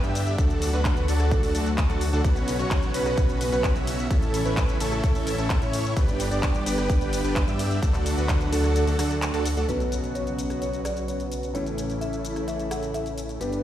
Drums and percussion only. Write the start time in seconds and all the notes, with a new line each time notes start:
0.04 closed hi-hat, shaker
0.15 open hi-hat, shaker
0.27 closed hi-hat, shaker
0.38 kick, closed hi-hat, shaker
0.50 closed hi-hat, shaker
0.62 open hi-hat, shaker
0.74 shaker
0.85 kick, clap, closed hi-hat, shaker
0.97 closed hi-hat, shaker
1.08 open hi-hat, shaker
1.20 cross-stick, closed hi-hat, shaker
1.31 kick, closed hi-hat, shaker
1.43 open hi-hat, shaker
1.55 open hi-hat, shaker
1.66 closed hi-hat, shaker
1.78 kick, clap, closed hi-hat, shaker
1.90 closed hi-hat, shaker
2.01 open hi-hat, shaker
2.13 shaker
2.24 kick, closed hi-hat, ride, shaker
2.36 closed hi-hat, shaker
2.48 open hi-hat, ride, shaker
2.59 closed hi-hat, shaker
2.71 kick, clap, closed hi-hat, ride, shaker
2.83 closed hi-hat, shaker
2.94 open hi-hat, ride, shaker
3.06 cross-stick, closed hi-hat, shaker
3.18 kick, closed hi-hat, ride, shaker
3.29 closed hi-hat, shaker
3.41 open hi-hat, ride, shaker
3.53 closed hi-hat, shaker
3.64 kick, clap, closed hi-hat, ride, shaker
3.76 closed hi-hat, shaker
3.87 open hi-hat, ride, shaker
3.99 closed hi-hat, shaker
4.11 kick, closed hi-hat, ride, shaker
4.22 closed hi-hat, shaker
4.34 open hi-hat, ride, shaker
4.46 closed hi-hat, shaker
4.57 kick, clap, closed hi-hat, ride, shaker
4.69 closed hi-hat, shaker
4.80 open hi-hat, ride, shaker
4.92 cross-stick, closed hi-hat, shaker
5.04 kick, closed hi-hat, ride, shaker
5.15 open hi-hat, shaker
5.27 open hi-hat, ride, shaker
5.38 closed hi-hat, shaker
5.50 kick, clap, closed hi-hat, ride, shaker
5.62 closed hi-hat, shaker
5.73 open hi-hat, ride, shaker
5.85 closed hi-hat, shaker
5.97 kick, closed hi-hat, ride, shaker
6.08 closed hi-hat, shaker
6.20 open hi-hat, ride, shaker
6.31 closed hi-hat, shaker
6.43 kick, clap, closed hi-hat, ride, shaker
6.55 closed hi-hat, shaker
6.66 open hi-hat, ride, shaker
6.78 cross-stick, closed hi-hat, shaker
6.90 kick, closed hi-hat, ride, shaker
7.01 closed hi-hat, shaker
7.13 open hi-hat, ride, shaker
7.25 closed hi-hat, shaker
7.36 kick, clap, closed hi-hat, ride, shaker
7.48 closed hi-hat, shaker
7.59 open hi-hat, ride, shaker
7.71 closed hi-hat, shaker
7.83 kick, closed hi-hat, ride, shaker
7.94 clap, closed hi-hat, shaker
8.06 open hi-hat, ride, shaker
8.18 closed hi-hat, shaker
8.29 kick, clap, closed hi-hat, ride, shaker
8.41 closed hi-hat, shaker
8.53 open hi-hat, ride, shaker
8.64 cross-stick, closed hi-hat, shaker
8.76 closed hi-hat, ride, shaker
8.87 open hi-hat, shaker
8.99 cross-stick, open hi-hat, ride, shaker
9.11 closed hi-hat, shaker
9.22 clap, closed hi-hat, ride, shaker
9.34 closed hi-hat, shaker
9.46 open hi-hat, ride, shaker
9.57 closed hi-hat, shaker
9.69 closed hi-hat, shaker
9.80 closed hi-hat, shaker
9.92 closed hi-hat, shaker
10.04 closed hi-hat, shaker
10.15 closed hi-hat, shaker
10.27 closed hi-hat, shaker
10.39 closed hi-hat, shaker
10.50 cross-stick, closed hi-hat, shaker
10.62 closed hi-hat, shaker
10.73 closed hi-hat, shaker
10.85 cross-stick, closed hi-hat, shaker
10.97 closed hi-hat, shaker
11.08 closed hi-hat, shaker
11.20 closed hi-hat, shaker
11.32 closed hi-hat, shaker
11.43 closed hi-hat, shaker
11.55 closed hi-hat, shaker
11.66 closed hi-hat, shaker
11.78 closed hi-hat, shaker
11.90 closed hi-hat, shaker
12.01 closed hi-hat, shaker
12.13 closed hi-hat, shaker
12.25 closed hi-hat, shaker
12.36 cross-stick, closed hi-hat, shaker
12.48 closed hi-hat, shaker
12.59 closed hi-hat, shaker
12.71 cross-stick, closed hi-hat, shaker
12.83 closed hi-hat, shaker
12.94 closed hi-hat, shaker
13.06 closed hi-hat, shaker
13.18 closed hi-hat, shaker
13.29 closed hi-hat, shaker
13.41 closed hi-hat, shaker
13.52 closed hi-hat, shaker